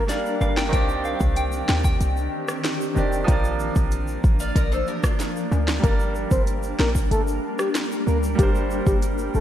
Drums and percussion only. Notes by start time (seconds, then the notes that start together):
0.09 snare, closed hi-hat, shaker
0.26 shaker
0.41 high timbale, shaker
0.57 snare, high timbale, shaker
0.73 kick, closed hi-hat, shaker
0.89 shaker
1.04 shaker
1.20 kick, shaker
1.36 closed hi-hat, shaker
1.52 shaker
1.68 snare, shaker
1.84 kick, shaker
2.01 closed hi-hat, shaker
2.17 shaker
2.48 cross-stick, shaker
2.64 snare, closed hi-hat, shaker
2.81 shaker
2.97 shaker
3.12 shaker
3.28 kick, closed hi-hat, shaker
3.44 shaker
3.60 shaker
3.75 kick, shaker
3.92 closed hi-hat, shaker
4.07 shaker
4.24 kick, shaker
4.40 shaker
4.56 kick, closed hi-hat, shaker
4.72 shaker
4.87 shaker
5.04 kick, cross-stick, shaker
5.20 snare, closed hi-hat, shaker
5.37 shaker
5.52 high timbale, shaker
5.68 snare, high timbale, shaker
5.84 kick, closed hi-hat, shaker
6.00 shaker
6.15 shaker
6.31 kick, shaker
6.47 closed hi-hat, shaker
6.63 shaker
6.79 snare, shaker
6.95 kick, shaker
7.11 closed hi-hat, shaker
7.28 shaker
7.59 cross-stick, shaker
7.75 snare, closed hi-hat, shaker
7.92 shaker
8.07 shaker
8.23 shaker
8.39 kick, closed hi-hat, shaker
8.55 shaker
8.71 shaker
8.86 kick, shaker
9.02 closed hi-hat, shaker
9.18 shaker
9.35 shaker